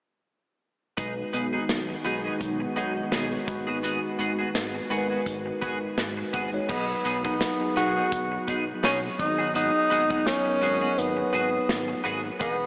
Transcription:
0.97 analog synth bass B1, analog synth pad D#3 G#3 B3 F#4, tine electric piano G#3 D#4 F#4 B4, clean electric guitar B3 D#4 G#4, kick, closed hi-hat
1.33 analog synth bass B1, clean electric guitar B3 D#4 G#4, closed hi-hat
1.53 clean electric guitar B3 D#4 G#4
1.69 analog synth bass B1, muted clean electric guitar stroke, snare, closed hi-hat
1.89 muted clean electric guitar stroke
2.05 analog synth bass B1, tine electric piano G#3 D#4 F#4 G#4, clean electric guitar B3 D#4 G#4, closed hi-hat
2.24 clean electric guitar B3 D#4 G#4
2.41 analog synth bass B1, kick, closed hi-hat
2.60 muted clean electric guitar stroke
2.76 analog synth bass B1, clean electric guitar B3 D#4 G#4, tine electric piano C#5 F#5, closed hi-hat
2.96 tine electric piano A#4 D#5, muted clean electric guitar stroke
3.12 analog synth bass B1, clean electric guitar B3 D#4 G#4, tine electric piano G#4 C#5, snare, closed hi-hat
3.32 tine electric piano F#4 B4, muted clean electric guitar stroke
3.47 analog synth bass G#1, tine electric piano G#3 D#4 F#4 B4, muted clean electric guitar stroke, kick, closed hi-hat
3.67 clean electric guitar B3 F#4 G#4
3.83 clean electric guitar B3 F#4 G#4, closed hi-hat
4.19 analog synth bass G#1, clean electric guitar B3 F#4 G#4, closed hi-hat
4.39 clean electric guitar B3 F#4 G#4
4.55 analog synth bass G#1, muted clean electric guitar stroke, snare, closed hi-hat
4.74 muted clean electric guitar stroke
4.90 analog synth bass G#1, tine electric piano G#3 D#4 F#4 A#4, clean electric guitar B3 F#4 G#4, closed hi-hat
4.98 tine electric piano B4
5.10 clean electric guitar B3 F#4 G#4
5.26 analog synth bass G#1, kick, closed hi-hat
5.46 muted clean electric guitar stroke
5.61 analog synth bass G#1, clean electric guitar B3 F#4 G#4, kick, closed hi-hat
5.81 muted clean electric guitar stroke
5.98 analog synth bass G#1, snare, closed hi-hat
6.17 muted clean electric guitar stroke
6.33 analog synth bass G#1, clean electric guitar B3 F#4 G#4, kick, closed hi-hat
6.53 tine electric piano G#3 D#4 F#4 C#5, muted clean electric guitar stroke
6.69 analog synth bass B1, tine electric piano F#3 B3 D#4 G#4, clean electric guitar B3 D#4 G#4, tenor saxophone B3, kick, crash
7.05 analog synth bass B1, clean electric guitar B3 D#4 G#4, closed hi-hat
7.24 tine electric piano F#3 B3 D#4 A#4, tenor saxophone B3, clean electric guitar B3 D#4 G#4, kick
7.41 muted clean electric guitar stroke, snare, closed hi-hat
7.60 tine electric piano F#3 B3 D#4 G#4, muted clean electric guitar stroke
7.76 analog synth bass B1, clean electric guitar B3 D#4 G#4, tenor saxophone F#4, closed hi-hat
7.96 clean electric guitar B3 D#4 G#4
8.12 analog synth bass B1, kick, closed hi-hat
8.32 muted clean electric guitar stroke
8.48 analog synth bass B1, clean electric guitar B3 D#4 G#4, kick, closed hi-hat
8.67 muted clean electric guitar stroke
8.83 analog synth bass B1, clean electric guitar B3 D#4 G#4, tenor saxophone C#4, snare, closed hi-hat
9.03 muted clean electric guitar stroke
9.19 analog synth bass G#1, tine electric piano F#3 B3 D#4 G#4, tenor saxophone D#4, muted clean electric guitar stroke, kick, closed hi-hat
9.38 clean electric guitar B3 F#4 G#4
9.54 clean electric guitar B3 F#4 G#4, tenor saxophone D#4, closed hi-hat
9.90 analog synth bass G#1, clean electric guitar B3 F#4 G#4, closed hi-hat
10.10 tine electric piano F#3 B3 D#4 G#4, clean electric guitar B3 F#4 G#4, kick
10.26 tenor saxophone C#4, muted clean electric guitar stroke, snare, closed hi-hat
10.46 tine electric piano F#3 B3 D#4 A#4, muted clean electric guitar stroke
10.62 analog synth bass G#1, clean electric guitar B3 F#4 G#4, closed hi-hat
10.81 clean electric guitar B3 F#4 G#4
10.98 analog synth bass G#1, tenor saxophone B3, closed hi-hat
11.17 muted clean electric guitar stroke
11.33 analog synth bass G#1, clean electric guitar B3 F#4 G#4, closed hi-hat
11.53 muted clean electric guitar stroke
11.69 analog synth bass G#1, snare, closed hi-hat
11.88 muted clean electric guitar stroke
12.04 analog synth bass G#1, clean electric guitar B3 F#4 G#4, closed hi-hat
12.24 muted clean electric guitar stroke
12.40 analog synth bass E1, tine electric piano E3 B3 D#4 G#4, clean electric guitar B3 D#4 G#4, tenor saxophone B3, kick, closed hi-hat

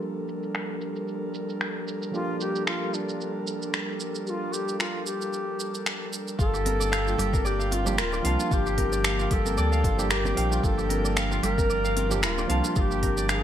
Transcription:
Already playing: tine electric piano F3 A#3 D4 G4, analog synth pad G3 D4 A4 A#4
0.02 shaker
0.28 shaker
0.43 shaker
0.55 finger snap, shaker
0.81 shaker
0.96 shaker
1.08 shaker
1.34 shaker
1.49 shaker
1.61 finger snap, shaker
1.88 shaker
2.02 shaker
2.12 tine electric piano F3 A#3 D4 G4, bansuri F4, shaker
2.41 bansuri G4, shaker
2.56 shaker
2.67 bansuri F4, finger snap, shaker
2.94 bansuri D4, shaker
3.09 shaker
3.21 shaker
3.47 shaker
3.62 shaker
3.74 finger snap, shaker
4.00 shaker
4.15 shaker
4.27 bansuri F4 G4, shaker
4.53 bansuri G4, shaker
4.68 shaker
4.79 bansuri F4, finger snap, shaker
5.06 bansuri G4, shaker
5.21 shaker
5.33 shaker
5.60 shaker
5.74 shaker
5.86 finger snap, shaker
6.13 shaker
6.28 shaker
6.38 sub bass G1, analog synth pad G3 A#3 D4 G5, kora F4, bansuri A4, kick, shaker
6.53 kora G4, shaker
6.65 kora A#4, open hi-hat, high conga
6.80 kora D5, shaker
6.92 kora F5, finger snap, shaker
7.07 kora F4, shaker
7.18 sub bass G1, kora G4, open hi-hat, low conga
7.33 kora A#4, kick, high bongo, high conga, shaker
7.45 bansuri G4, kora D5, shaker
7.59 kora F5, shaker
7.71 kora F4, bansuri F4, open hi-hat, high conga
7.85 tine electric piano F3 A#3 D4 G4, kora G4, low conga, shaker
7.98 sub bass D1, bansuri F4, kora A#4, finger snap, shaker
8.12 kora D5, high bongo, shaker
8.22 sub bass C2, tine electric piano F3 A#3 D4, kora F5, open hi-hat, high conga
8.27 tine electric piano A5
8.39 kora F4, high bongo, shaker
8.51 sub bass G1, kora F4, bansuri G4, kick, shaker
8.66 kora G4, shaker
8.78 kora A#4, kick, open hi-hat, high bongo, high conga
8.92 kora D5, shaker
9.04 kora F5, finger snap, shaker
9.19 kora F4, shaker
9.31 sub bass G1, kora G4, bansuri A4, kick, open hi-hat, low conga
9.46 kora A#4, high conga, shaker
9.57 sub bass D2, kora D5, shaker
9.72 kora F5, shaker
9.84 sub bass G1, kora F4, kick, open hi-hat, high bongo, low conga
9.97 tine electric piano F3 A#3 D4 G4, kora G4, shaker
10.10 bansuri G4, kora A#4, finger snap, shaker
10.25 kora D5, high bongo, high conga, low conga, shaker
10.34 sub bass A#1, tine electric piano F3 A#3 D4 G5, kora F5, open hi-hat
10.51 kora F4, high bongo, shaker
10.63 sub bass G1, kora F4, bansuri A4, kick, shaker
10.78 kora G4, shaker
10.89 kora A#4, open hi-hat, high conga
11.05 kora D5, shaker
11.16 kora F5, finger snap, shaker
11.31 kora F4, shaker
11.43 sub bass G1, kora G4, bansuri A#4, open hi-hat, low conga
11.58 kora A#4, kick, high bongo, high conga, shaker
11.70 kora D5, shaker
11.84 kora F5, shaker
11.96 kora F4, open hi-hat, high conga
12.10 tine electric piano F3 A#3 D4 G4, kora G4, low conga, shaker
12.23 sub bass D1, bansuri F4, kora A#4, finger snap, shaker
12.38 kora D5, high bongo, shaker
12.47 sub bass C2, tine electric piano F3 A#3 D4, kora F5, open hi-hat, high conga
12.51 tine electric piano A5
12.64 kora F4, high bongo, shaker
12.76 sub bass G1, kora F4, bansuri A4, kick, shaker
12.80 bansuri G4
12.91 kora G4, shaker
13.02 kora A#4, kick, open hi-hat, high bongo, high conga
13.17 kora D5, shaker
13.29 bansuri A4, kora F5, finger snap, shaker

